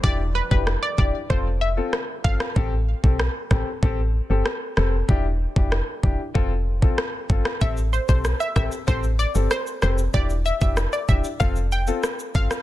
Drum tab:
SH |----------------|----------------|----------------|xxxxxxxxxxxxxxxx|
SD |----r-------r--r|----r-r-----r-r-|----r-------r--r|----r-r-----r-r-|
BD |o--o--o-o-----o-|o--o--o-o-------|o--o--o-o--o--o-|o--o--o-o-------|

SH |xxxxxxxxxxxxxxxx|
SD |----r-------r--r|
BD |o--o--o-o-----o-|